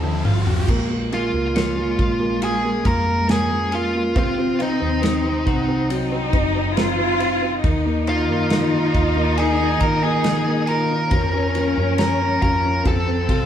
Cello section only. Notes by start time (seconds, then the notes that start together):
0.62 G3
0.68 G#3
4.16 C4
5.90 D#4
6.77 F4
7.62 D#4
11.12 C#4
12.85 C4